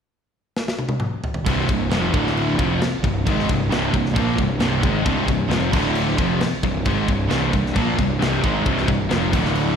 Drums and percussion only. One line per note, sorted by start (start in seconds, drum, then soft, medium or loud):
0.56 snare medium
0.68 snare medium
0.79 high tom medium
0.89 high tom medium
1.00 mid tom medium
1.24 floor tom medium
1.34 floor tom loud
1.46 kick loud
1.46 crash medium
1.69 kick loud
1.69 crash medium
1.91 snare loud
1.91 crash medium
2.14 kick loud
2.14 crash medium
2.27 snare soft
2.37 crash medium
2.59 kick loud
2.59 crash medium
2.81 snare loud
2.81 crash medium
3.04 kick medium
3.04 crash medium
3.27 kick loud
3.27 crash medium
3.39 snare soft
3.49 kick loud
3.49 crash medium
3.72 snare loud
3.72 crash medium
3.94 kick medium
3.94 crash medium
4.05 snare soft
4.16 kick loud
4.16 crash medium
4.38 kick medium
4.38 crash medium
4.60 snare loud
4.60 crash medium
4.83 kick loud
4.83 crash medium
5.06 kick loud
5.06 crash medium
5.28 kick loud
5.28 crash medium
5.51 snare loud
5.51 crash medium
5.73 kick loud
5.73 crash loud
5.95 crash medium
6.18 kick loud
6.18 crash medium
6.41 snare loud
6.41 crash medium
6.63 kick loud
6.63 crash medium
6.85 kick loud
6.85 crash medium
7.08 kick loud
7.08 crash medium
7.30 snare loud
7.30 crash medium
7.53 kick medium
7.53 crash medium
7.66 snare soft
7.76 kick loud
7.76 crash medium
7.99 kick medium
7.99 crash medium
8.22 snare loud
8.22 crash medium
8.44 kick medium
8.44 crash medium
8.66 kick loud
8.66 crash medium
8.77 snare soft
8.88 kick medium
8.88 crash medium
9.10 snare loud
9.10 crash medium
9.33 kick loud
9.33 crash loud
9.45 snare soft
9.55 crash medium